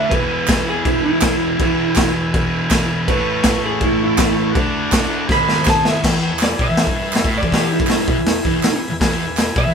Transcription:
0.00 0.11 A3 loud
0.00 0.12 D4 loud
0.00 0.10 E5 medium
0.09 1.56 E2 loud
0.09 1.59 B2 loud
0.09 3.03 E4 medium
0.09 3.04 G#4 medium
0.09 0.64 B4 loud
0.09 3.04 B4 medium
0.09 kick loud
0.09 crash medium
0.14 1.62 E3 loud
0.48 kick loud
0.48 snare loud
0.48 clap loud
0.48 crash medium
0.70 0.86 G#4 loud
0.85 1.03 E4 medium
0.85 kick loud
0.85 crash medium
1.04 2.12 E4 loud
1.21 kick loud
1.21 snare loud
1.21 clap loud
1.21 crash medium
1.57 3.05 E2 loud
1.57 3.07 B2 loud
1.57 kick loud
1.57 crash medium
1.63 3.08 E3 loud
1.96 kick loud
1.96 snare loud
1.96 clap medium
1.96 crash medium
2.34 kick loud
2.34 crash medium
2.71 kick loud
2.71 snare loud
2.71 clap medium
2.71 crash medium
3.06 4.55 A2 loud
3.06 4.52 E4 medium
3.06 4.51 A4 medium
3.06 3.62 B4 loud
3.06 4.53 C#5 medium
3.06 kick loud
3.06 crash medium
3.10 4.56 E3 loud
3.10 4.57 A3 loud
3.43 kick loud
3.43 snare loud
3.43 clap medium
3.43 crash medium
3.66 3.82 G#4 medium
3.81 4.01 E4 medium
3.81 kick loud
3.81 crash medium
4.04 4.56 E4 loud
4.18 kick loud
4.18 snare loud
4.18 clap loud
4.18 crash medium
4.51 5.26 F#4 medium
4.51 5.26 A4 medium
4.51 5.27 D5 medium
4.55 5.28 D3 loud
4.55 5.30 A3 loud
4.55 kick loud
4.55 crash medium
4.60 5.31 D4 loud
4.92 kick loud
4.92 snare loud
4.92 clap loud
4.92 crash medium
5.27 6.02 G#2 medium
5.27 6.01 G#4 medium
5.27 6.01 C5 medium
5.27 6.02 D#5 medium
5.27 kick loud
5.27 snare medium
5.32 6.04 D#3 loud
5.32 6.05 G#3 medium
5.32 5.67 B5 loud
5.49 snare medium
5.65 kick loud
5.65 snare medium
5.65 clap loud
5.70 5.86 A5 medium
5.85 6.04 E5 medium
5.85 snare medium
6.04 6.31 E2 loud
6.04 8.97 G#4 medium
6.04 8.97 B4 medium
6.04 8.97 E5 medium
6.04 kick loud
6.04 snare loud
6.04 crash loud
6.32 6.47 E2 medium
6.39 6.60 D5 medium
6.39 snare loud
6.39 clap loud
6.39 open hi-hat medium
6.59 6.68 B2 loud
6.59 7.32 E5 medium
6.59 kick loud
6.68 6.86 E2 loud
6.77 snare loud
6.77 open hi-hat medium
6.86 7.14 G2 medium
6.86 kick loud
7.13 7.25 E2 medium
7.13 snare loud
7.13 clap medium
7.13 open hi-hat medium
7.24 7.42 A2 loud
7.24 kick loud
7.38 7.54 D5 medium
7.42 7.79 E2 loud
7.42 kick loud
7.52 7.72 G4 medium
7.52 kick loud
7.52 snare loud
7.52 open hi-hat medium
7.72 8.79 E4 medium
7.79 8.07 G2 loud
7.79 kick loud
7.87 snare loud
7.87 clap medium
7.87 open hi-hat medium
8.08 8.17 B2 loud
8.08 kick loud
8.18 8.32 E2 medium
8.26 snare loud
8.26 open hi-hat medium
8.45 8.61 E2 medium
8.45 kick loud
8.62 muted distorted electric guitar stroke medium
8.62 snare loud
8.62 clap medium
8.62 open hi-hat medium
8.89 8.99 E2 medium
9.00 9.26 E2 loud
9.00 9.74 G#4 medium
9.00 9.74 B4 medium
9.00 9.74 E5 medium
9.00 kick loud
9.00 snare loud
9.00 open hi-hat medium
9.27 9.43 E2 medium
9.37 snare loud
9.37 clap medium
9.37 open hi-hat medium
9.56 9.64 B2 loud
9.56 9.74 E5 loud
9.56 kick loud
9.65 9.74 E2 loud

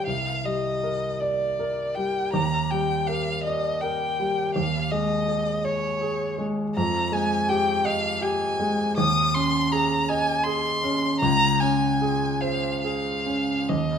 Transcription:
0.07 2.29 C2 soft
0.07 0.47 F5 medium
0.45 1.06 G3 soft
0.45 1.21 D#5 medium
0.84 1.43 A#4 soft
1.20 1.97 D5 medium
1.20 1.81 D5 soft
1.59 2.19 A#4 soft
1.95 2.34 G3 soft
1.95 2.33 G5 medium
2.33 4.52 D#2 soft
2.33 2.72 A#5 medium
2.70 3.31 G3 soft
2.70 3.09 G5 medium
3.07 3.67 A#4 soft
3.07 3.43 F5 medium
3.44 4.05 D5 soft
3.44 3.83 D#5 medium
3.81 4.41 A#4 soft
3.81 4.54 G5 medium
4.20 4.56 G3 soft
4.55 6.72 D#2 soft
4.55 4.93 F5 medium
4.91 5.51 G#3 soft
4.91 5.66 D#5 medium
5.28 5.87 G#4 soft
5.65 6.24 C#5 soft
5.65 6.39 C#5 medium
6.01 6.61 G#4 soft
6.38 6.76 G#3 soft
6.76 8.94 F2 medium
6.76 7.15 A#5 medium
7.12 7.71 G#3 soft
7.12 7.50 G#5 medium
7.49 8.08 G4 soft
7.49 7.88 G5 medium
7.85 8.44 D#5 medium
7.85 8.24 F5 medium
8.21 8.82 G4 soft
8.21 8.97 G#5 medium
8.60 8.97 G#3 soft
8.97 11.18 D#2 medium
8.97 9.36 D#6 medium
9.34 9.94 C#4 soft
9.34 9.74 C6 medium
9.72 10.31 G#4 soft
9.72 10.10 A#5 medium
10.09 10.68 D#5 medium
10.09 10.45 G#5 medium
10.44 11.06 G#4 soft
10.44 11.20 C6 medium
10.84 11.22 C#4 medium
11.20 13.65 C#2 medium
11.20 11.61 A#5 loud
11.60 12.26 C#4 soft
11.60 12.42 G#5 medium
12.01 12.66 G#4 soft
12.41 13.08 C5 soft
12.41 12.81 F5 medium
12.82 13.52 G#4 soft
12.82 13.70 F5 medium
13.26 13.69 C#4 soft
13.69 13.98 D#2 soft
13.69 13.98 D#5 medium

